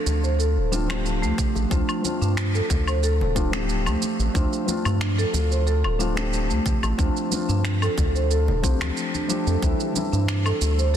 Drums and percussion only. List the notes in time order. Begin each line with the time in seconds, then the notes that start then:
0.06 high bongo, high conga, shaker
0.23 high bongo, shaker
0.40 shaker
0.72 high conga, shaker
0.90 finger snap, high bongo, low woodblock, shaker
1.06 shaker
1.23 shaker
1.38 kick, high conga, low conga, shaker
1.55 high bongo, shaker
1.71 kick, shaker
1.89 low woodblock, shaker
2.04 high conga, shaker
2.22 shaker
2.37 finger snap, shaker
2.55 shaker
2.70 kick, high bongo, high conga, low conga, shaker
2.88 low woodblock, shaker
3.03 shaker
3.21 low conga
3.36 kick, shaker
3.53 finger snap, high conga, shaker
3.69 shaker
3.86 high conga, low woodblock, shaker
4.02 high conga, shaker
4.20 shaker
4.35 kick, shaker
4.53 high bongo, shaker
4.68 high conga, shaker
4.85 low woodblock, shaker
5.01 finger snap, shaker
5.19 shaker
5.34 high bongo, high conga, shaker
5.52 high bongo, shaker
5.67 shaker
5.84 low woodblock
5.99 high conga, shaker
6.17 finger snap, high bongo, shaker
6.33 shaker
6.50 shaker
6.66 kick, high conga, low conga, shaker
6.83 high bongo, low woodblock, shaker
6.99 kick, shaker
7.17 shaker
7.32 high conga, shaker
7.49 shaker
7.65 finger snap, shaker
7.82 low woodblock, shaker
7.98 kick, high bongo, high conga, low conga, shaker
8.16 high bongo, shaker
8.31 shaker
8.48 low conga
8.64 kick, shaker
8.81 finger snap, high conga, low woodblock, shaker
8.97 shaker
9.14 high conga, shaker
9.30 high conga, shaker
9.47 shaker
9.63 kick, shaker
9.80 high bongo, shaker
9.96 high conga, shaker
10.13 shaker
10.28 finger snap, shaker
10.46 low woodblock, shaker
10.61 high bongo, high conga, shaker
10.79 high bongo, shaker